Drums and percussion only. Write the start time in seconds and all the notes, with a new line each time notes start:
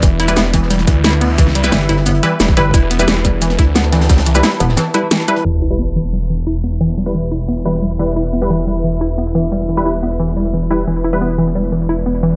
0.02 kick, closed hi-hat, shaker
0.19 closed hi-hat, shaker
0.28 snare, closed hi-hat, shaker
0.36 snare, closed hi-hat, shaker
0.54 kick, snare, closed hi-hat, shaker
0.62 snare
0.70 closed hi-hat, shaker
0.79 snare, closed hi-hat
0.87 kick, closed hi-hat, shaker
1.04 snare, closed hi-hat, shaker
1.13 snare
1.21 closed hi-hat, open hi-hat
1.38 kick, closed hi-hat, shaker
1.47 snare
1.55 closed hi-hat, shaker
1.64 snare, shaker
1.72 snare, closed hi-hat, shaker
1.81 closed hi-hat
1.89 closed hi-hat, shaker
1.97 snare
2.06 closed hi-hat, shaker
2.15 closed hi-hat
2.23 closed hi-hat, shaker
2.40 snare, closed hi-hat, shaker
2.48 kick
2.56 closed hi-hat
2.74 kick, closed hi-hat, shaker
2.90 closed hi-hat, shaker
2.99 snare, shaker
3.08 snare, closed hi-hat, shaker
3.25 kick, snare, closed hi-hat, shaker
3.42 closed hi-hat, shaker
3.50 snare, closed hi-hat
3.59 kick, closed hi-hat, shaker
3.75 snare, closed hi-hat, shaker
3.84 snare
3.92 snare, closed hi-hat
4.01 snare, closed hi-hat
4.09 kick, snare, closed hi-hat, shaker
4.17 snare, closed hi-hat
4.25 closed hi-hat, shaker
4.35 snare, shaker
4.43 snare, closed hi-hat, shaker
4.51 closed hi-hat
4.60 closed hi-hat, shaker
4.69 snare
4.77 snare, closed hi-hat, shaker
4.94 closed hi-hat, shaker
5.11 snare, closed hi-hat, shaker
5.20 closed hi-hat
5.28 closed hi-hat, shaker
5.36 closed hi-hat